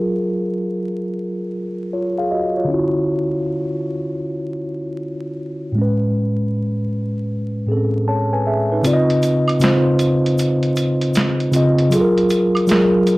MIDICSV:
0, 0, Header, 1, 3, 480
1, 0, Start_track
1, 0, Tempo, 769231
1, 1674, Time_signature, 4, 2, 24, 8
1, 8223, End_track
2, 0, Start_track
2, 0, Title_t, "Tine electric piano"
2, 0, Program_c, 0, 4
2, 0, Control_c, 0, 64, 127
2, 0, Note_on_c, 0, 54, 58
2, 0, Note_on_c, 0, 65, 63
2, 0, Note_on_c, 0, 68, 52
2, 0, Note_on_c, 0, 70, 62
2, 931, Note_off_c, 0, 65, 0
2, 940, Note_off_c, 0, 68, 0
2, 950, Note_off_c, 0, 70, 0
2, 1206, Note_on_c, 0, 73, 56
2, 1209, Note_on_c, 0, 65, 48
2, 1350, Note_off_c, 0, 73, 0
2, 1352, Note_off_c, 0, 65, 0
2, 1363, Note_on_c, 0, 77, 62
2, 1366, Note_on_c, 0, 68, 48
2, 1436, Note_off_c, 0, 77, 0
2, 1437, Note_off_c, 0, 68, 0
2, 1443, Note_on_c, 0, 75, 60
2, 1446, Note_on_c, 0, 66, 52
2, 1588, Note_off_c, 0, 75, 0
2, 1590, Note_off_c, 0, 66, 0
2, 1603, Note_on_c, 0, 73, 57
2, 1608, Note_on_c, 0, 65, 45
2, 1639, Note_off_c, 0, 54, 0
2, 1651, Note_on_c, 0, 50, 63
2, 1672, Note_on_c, 0, 61, 58
2, 1683, Control_c, 0, 64, 0
2, 1691, Note_on_c, 0, 64, 62
2, 1710, Note_on_c, 0, 66, 74
2, 1801, Control_c, 0, 64, 127
2, 1826, Note_off_c, 0, 73, 0
2, 1829, Note_off_c, 0, 65, 0
2, 3558, Note_off_c, 0, 50, 0
2, 3568, Note_off_c, 0, 61, 0
2, 3570, Note_on_c, 0, 45, 62
2, 3578, Note_off_c, 0, 64, 0
2, 3587, Note_off_c, 0, 66, 0
2, 3590, Note_on_c, 0, 56, 59
2, 3603, Control_c, 0, 64, 0
2, 3609, Note_on_c, 0, 61, 61
2, 3629, Note_on_c, 0, 71, 62
2, 3728, Control_c, 0, 64, 127
2, 4758, Note_off_c, 0, 45, 0
2, 4768, Note_off_c, 0, 56, 0
2, 4778, Note_off_c, 0, 61, 0
2, 4785, Note_on_c, 0, 45, 51
2, 4788, Note_off_c, 0, 71, 0
2, 4795, Note_on_c, 0, 68, 47
2, 4804, Note_on_c, 0, 60, 36
2, 4815, Note_on_c, 0, 69, 57
2, 4845, Note_on_c, 0, 61, 48
2, 4853, Note_off_c, 0, 60, 0
2, 5041, Note_on_c, 0, 81, 58
2, 5045, Note_off_c, 0, 69, 0
2, 5046, Note_on_c, 0, 73, 53
2, 5188, Note_off_c, 0, 81, 0
2, 5190, Note_off_c, 0, 73, 0
2, 5198, Note_on_c, 0, 80, 58
2, 5202, Note_on_c, 0, 71, 49
2, 5273, Note_off_c, 0, 80, 0
2, 5275, Note_off_c, 0, 71, 0
2, 5279, Note_off_c, 0, 68, 0
2, 5283, Note_on_c, 0, 76, 58
2, 5287, Note_on_c, 0, 68, 48
2, 5429, Note_off_c, 0, 76, 0
2, 5430, Note_off_c, 0, 68, 0
2, 5441, Note_on_c, 0, 71, 56
2, 5446, Note_on_c, 0, 63, 53
2, 5507, Note_on_c, 0, 49, 79
2, 5510, Note_off_c, 0, 45, 0
2, 5516, Note_on_c, 0, 60, 66
2, 5523, Control_c, 0, 64, 0
2, 5526, Note_on_c, 0, 65, 73
2, 5536, Note_on_c, 0, 74, 71
2, 5540, Note_off_c, 0, 61, 0
2, 5575, Note_on_c, 0, 75, 90
2, 5578, Note_off_c, 0, 74, 0
2, 5639, Control_c, 0, 64, 127
2, 5665, Note_off_c, 0, 71, 0
2, 5667, Note_off_c, 0, 63, 0
2, 5887, Note_off_c, 0, 49, 0
2, 5891, Note_off_c, 0, 60, 0
2, 5896, Note_off_c, 0, 65, 0
2, 5921, Note_off_c, 0, 75, 0
2, 5987, Note_on_c, 0, 49, 76
2, 5997, Note_on_c, 0, 60, 67
2, 6006, Note_on_c, 0, 65, 76
2, 6017, Note_on_c, 0, 72, 86
2, 6688, Note_off_c, 0, 49, 0
2, 6693, Note_off_c, 0, 60, 0
2, 6698, Note_off_c, 0, 65, 0
2, 6703, Note_off_c, 0, 72, 0
2, 7187, Note_on_c, 0, 49, 84
2, 7197, Note_on_c, 0, 60, 61
2, 7205, Note_on_c, 0, 65, 67
2, 7216, Note_on_c, 0, 75, 79
2, 7384, Note_off_c, 0, 49, 0
2, 7389, Note_off_c, 0, 60, 0
2, 7393, Note_off_c, 0, 65, 0
2, 7398, Note_off_c, 0, 75, 0
2, 7425, Note_on_c, 0, 54, 72
2, 7435, Note_on_c, 0, 65, 74
2, 7443, Control_c, 0, 64, 0
2, 7445, Note_on_c, 0, 68, 72
2, 7456, Note_on_c, 0, 69, 69
2, 7496, Note_on_c, 0, 70, 85
2, 7498, Note_off_c, 0, 69, 0
2, 7546, Control_c, 0, 64, 127
2, 7806, Note_off_c, 0, 54, 0
2, 7811, Note_off_c, 0, 65, 0
2, 7816, Note_off_c, 0, 68, 0
2, 7841, Note_off_c, 0, 70, 0
2, 7906, Note_on_c, 0, 54, 84
2, 7916, Note_on_c, 0, 65, 69
2, 7925, Note_on_c, 0, 68, 74
2, 7936, Note_on_c, 0, 70, 84
2, 8223, Note_off_c, 0, 54, 0
2, 8223, Note_off_c, 0, 65, 0
2, 8223, Note_off_c, 0, 68, 0
2, 8223, Note_off_c, 0, 70, 0
2, 8223, End_track
3, 0, Start_track
3, 0, Title_t, "Drums"
3, 5517, Note_on_c, 9, 82, 67
3, 5519, Note_on_c, 9, 42, 74
3, 5579, Note_off_c, 9, 82, 0
3, 5581, Note_off_c, 9, 42, 0
3, 5678, Note_on_c, 9, 42, 35
3, 5741, Note_off_c, 9, 42, 0
3, 5757, Note_on_c, 9, 82, 47
3, 5759, Note_on_c, 9, 42, 61
3, 5819, Note_off_c, 9, 82, 0
3, 5821, Note_off_c, 9, 42, 0
3, 5914, Note_on_c, 9, 76, 77
3, 5923, Note_on_c, 9, 42, 38
3, 5976, Note_off_c, 9, 76, 0
3, 5986, Note_off_c, 9, 42, 0
3, 5991, Note_on_c, 9, 82, 72
3, 5999, Note_on_c, 9, 42, 67
3, 6014, Note_on_c, 9, 38, 103
3, 6054, Note_off_c, 9, 82, 0
3, 6061, Note_off_c, 9, 42, 0
3, 6076, Note_off_c, 9, 38, 0
3, 6234, Note_on_c, 9, 42, 64
3, 6235, Note_on_c, 9, 82, 43
3, 6297, Note_off_c, 9, 42, 0
3, 6298, Note_off_c, 9, 82, 0
3, 6403, Note_on_c, 9, 42, 48
3, 6465, Note_off_c, 9, 42, 0
3, 6478, Note_on_c, 9, 82, 59
3, 6485, Note_on_c, 9, 42, 80
3, 6541, Note_off_c, 9, 82, 0
3, 6547, Note_off_c, 9, 42, 0
3, 6631, Note_on_c, 9, 42, 36
3, 6694, Note_off_c, 9, 42, 0
3, 6714, Note_on_c, 9, 82, 47
3, 6720, Note_on_c, 9, 42, 71
3, 6776, Note_off_c, 9, 82, 0
3, 6783, Note_off_c, 9, 42, 0
3, 6873, Note_on_c, 9, 42, 50
3, 6935, Note_off_c, 9, 42, 0
3, 6952, Note_on_c, 9, 82, 61
3, 6960, Note_on_c, 9, 42, 90
3, 6971, Note_on_c, 9, 38, 95
3, 7014, Note_off_c, 9, 82, 0
3, 7022, Note_off_c, 9, 42, 0
3, 7034, Note_off_c, 9, 38, 0
3, 7115, Note_on_c, 9, 42, 34
3, 7178, Note_off_c, 9, 42, 0
3, 7192, Note_on_c, 9, 82, 52
3, 7198, Note_on_c, 9, 42, 72
3, 7255, Note_off_c, 9, 82, 0
3, 7260, Note_off_c, 9, 42, 0
3, 7354, Note_on_c, 9, 42, 37
3, 7416, Note_off_c, 9, 42, 0
3, 7435, Note_on_c, 9, 82, 71
3, 7439, Note_on_c, 9, 42, 81
3, 7497, Note_off_c, 9, 82, 0
3, 7502, Note_off_c, 9, 42, 0
3, 7598, Note_on_c, 9, 42, 35
3, 7660, Note_off_c, 9, 42, 0
3, 7673, Note_on_c, 9, 82, 45
3, 7678, Note_on_c, 9, 42, 68
3, 7735, Note_off_c, 9, 82, 0
3, 7740, Note_off_c, 9, 42, 0
3, 7831, Note_on_c, 9, 76, 67
3, 7841, Note_on_c, 9, 42, 36
3, 7893, Note_off_c, 9, 76, 0
3, 7904, Note_off_c, 9, 42, 0
3, 7908, Note_on_c, 9, 82, 69
3, 7919, Note_on_c, 9, 42, 71
3, 7934, Note_on_c, 9, 38, 94
3, 7971, Note_off_c, 9, 82, 0
3, 7981, Note_off_c, 9, 42, 0
3, 7996, Note_off_c, 9, 38, 0
3, 8153, Note_on_c, 9, 82, 42
3, 8155, Note_on_c, 9, 42, 63
3, 8215, Note_off_c, 9, 82, 0
3, 8217, Note_off_c, 9, 42, 0
3, 8223, End_track
0, 0, End_of_file